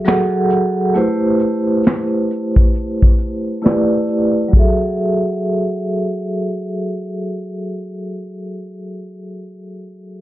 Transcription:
0.05 vibraphone F#3 F#4 G#4 A4 F#5, snare, closed hi-hat
0.50 closed hi-hat
0.94 vibraphone A3 E4 G4 B4 C5, closed hi-hat
1.39 closed hi-hat
1.83 snare, closed hi-hat
2.31 closed hi-hat
2.56 kick
2.74 closed hi-hat
3.02 kick
3.18 closed hi-hat
3.62 vibraphone A3 E4 G4 B4 D5, snare, closed hi-hat
4.08 closed hi-hat
4.49 vibraphone F#3 F#4
4.53 vibraphone G#4 A4, kick
4.59 vibraphone E5

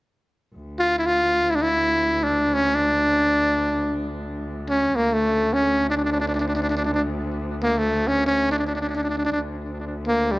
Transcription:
0.55 cello D2
0.79 muted trumpet F4
0.98 muted trumpet E4
1.06 muted trumpet F4
1.50 muted trumpet E4
1.55 muted trumpet D4
1.62 muted trumpet E4
2.23 muted trumpet D4
2.54 muted trumpet C#4
2.75 muted trumpet D4
4.69 muted trumpet C#4
4.96 cello D2, muted trumpet A#3
5.13 muted trumpet A3
5.53 muted trumpet C#4
5.90 muted trumpet D4
5.96 muted trumpet D4
6.04 muted trumpet D4
6.12 muted trumpet D4
6.20 muted trumpet D4
6.27 muted trumpet D4
6.34 muted trumpet D4
6.40 muted trumpet D4
6.47 muted trumpet D4
6.55 muted trumpet D4
6.62 muted trumpet D4
6.69 muted trumpet D4
6.77 muted trumpet D4
6.85 muted trumpet D4
6.94 muted trumpet D4
7.63 muted trumpet A#3
7.78 muted trumpet A3
8.07 muted trumpet C#4
8.26 muted trumpet C#4
8.51 muted trumpet D4
8.58 muted trumpet D4
8.67 muted trumpet D4
8.75 muted trumpet D4
8.81 muted trumpet D4
8.89 muted trumpet D4
8.95 muted trumpet D4
9.03 muted trumpet D4
9.09 muted trumpet D4
9.18 muted trumpet D4
9.25 muted trumpet D4
9.32 muted trumpet D4
9.36 cello D2
10.08 muted trumpet A#3
10.31 muted trumpet G3

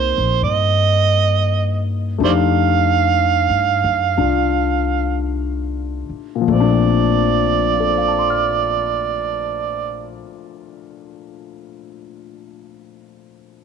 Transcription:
Already playing: upright bass C2, grand piano A#3 C4 D#4 G4, harmonica C5
0.18 upright bass A#1
0.42 upright bass G2, harmonica D#5
2.18 upright bass F2, grand piano A3 D4 D#4
2.24 grand piano G4, harmonica C5 D5 F5
3.50 upright bass G2
3.84 upright bass F#2
4.18 upright bass C2, grand piano D4 F4
6.09 muted upright bass stroke
6.35 grand piano A#2
6.41 grand piano F3
6.48 upright bass A#1, grand piano A3, harmonica D5
6.54 grand piano C4
6.60 grand piano D4
7.73 grand piano F4
7.80 grand piano A4
7.89 grand piano C5
7.98 grand piano F5
8.08 grand piano A5
8.18 grand piano C6
8.30 grand piano F6

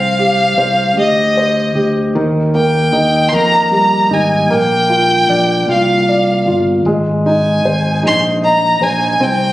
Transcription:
Already playing: fretless electric bass C2, grand piano C4, violin F5
0.19 grand piano G4
0.58 fretless electric bass C2, grand piano C5
0.96 fretless electric bass D2, grand piano G4, violin D#5
1.37 grand piano C5
1.75 fretless electric bass D2, grand piano G4
2.15 fretless electric bass D#2, grand piano D#3
2.54 grand piano A#3, violin G5
2.93 fretless electric bass D#2, grand piano D#4
3.28 grand piano A#3, violin C6
3.33 fretless electric bass F2, violin A#5
3.71 grand piano G3, violin A#5
4.11 fretless electric bass G#1, grand piano D#4, violin G#5
4.50 fretless electric bass A#1, grand piano A#3, violin G5
4.90 grand piano F4
5.29 fretless electric bass A#1, grand piano D5
5.69 fretless electric bass C2, grand piano F4, violin F5
6.09 grand piano D5
6.46 fretless electric bass G1, grand piano F4
6.85 fretless electric bass G#1, grand piano G#3
7.26 grand piano D#4, violin G#5
7.65 fretless electric bass G#1, grand piano C5
8.03 fretless electric bass A#1, grand piano D#4, violin C6
8.42 grand piano D#5, violin A#5
8.81 fretless electric bass A#1, grand piano C5, violin G#5
9.20 fretless electric bass C2, grand piano C4, violin G5

